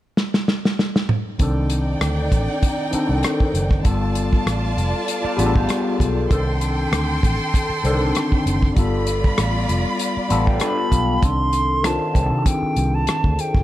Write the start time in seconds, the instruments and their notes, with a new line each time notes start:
0.17 snare
0.34 snare
0.48 snare
0.65 snare
0.79 snare
0.96 snare
1.09 mid tom
1.39 fingered electric bass C2, tine electric piano D#3 C4 D4 A4, violin section D#4 D5 G5, kick, closed hi-hat
1.70 closed hi-hat
2.01 fingered electric bass D2, cross-stick, closed hi-hat
2.32 fingered electric bass A1, kick, cross-stick, closed hi-hat
2.63 kick, closed hi-hat
2.91 tine electric piano D#3 C4 D4 A4, muted fingered electric bass stroke, closed hi-hat
3.09 fingered electric bass C2
3.23 cross-stick, closed hi-hat
3.40 kick
3.54 fingered electric bass F#1, closed hi-hat
3.71 kick, cross-stick
3.83 fingered electric bass G1, tine electric piano G3 B3 F4 A4, violin section F4 D5 A5, kick, closed hi-hat
4.15 closed hi-hat
4.33 kick
4.46 fingered electric bass A1, cross-stick, closed hi-hat
4.77 fingered electric bass F1, closed hi-hat
5.08 closed hi-hat
5.24 clean electric guitar F4 D5, muted fingered electric bass stroke
5.37 fingered electric bass A1, tine electric piano G3 B3 F4 G#4, clean electric guitar D4 B4, closed hi-hat
5.46 tine electric piano A4
5.55 clean electric guitar B3 G4, kick
5.69 cross-stick, closed hi-hat
6.00 fingered electric bass B1, kick, closed hi-hat
6.29 fingered electric bass C2, tine electric piano D#3 C4 D4 A4, violin section A4 G5 C6, kick, closed hi-hat
6.61 closed hi-hat
6.92 fingered electric bass D2, cross-stick, closed hi-hat
7.23 fingered electric bass A1, kick, cross-stick, closed hi-hat
7.54 kick, closed hi-hat
7.69 muted fingered electric bass stroke
7.83 fingered electric bass C2, tine electric piano D3 C4 D4 A4, closed hi-hat
7.90 tine electric piano D#3
8.15 cross-stick, closed hi-hat
8.32 kick
8.46 fingered electric bass F#1, closed hi-hat
8.62 kick, cross-stick
8.75 fingered electric bass G1, tine electric piano G3 B3 F4 A4, violin section F4 D5 B5, kick, closed hi-hat
9.07 closed hi-hat
9.24 kick
9.38 fingered electric bass A1, cross-stick, closed hi-hat
9.69 fingered electric bass F1, closed hi-hat
9.99 closed hi-hat
10.17 muted fingered electric bass stroke
10.29 fingered electric bass A1, tine electric piano G3 B3 F4 A4 B5, closed hi-hat
10.47 clean electric guitar F4 D5, tine electric piano G5, kick
10.60 clean electric guitar D4 B4, tine electric piano A5, flute B5, cross-stick, closed hi-hat
10.77 clean electric guitar A4
10.92 fingered electric bass B1, tine electric piano F5, kick, closed hi-hat
11.18 tine electric piano D3, flute B5
11.22 fingered electric bass C2, tine electric piano C4 D4 A4, flute C6, kick, closed hi-hat
11.27 tine electric piano D#3
11.53 closed hi-hat
11.83 tine electric piano D#3 C4 D4 F4, flute A5, cross-stick, closed hi-hat
12.14 fingered electric bass C2, tine electric piano D#3 C4 D4 G#4, kick, cross-stick, closed hi-hat
12.23 tine electric piano A4
12.32 fingered electric bass C3
12.46 flute G5, kick, closed hi-hat
12.62 muted fingered electric bass stroke
12.76 fingered electric bass C2, closed hi-hat
12.95 flute A5
13.07 muted fingered electric bass stroke, cross-stick, closed hi-hat
13.24 fingered electric bass D2, kick
13.39 flute G5, closed hi-hat
13.54 fingered electric bass F#1, kick, cross-stick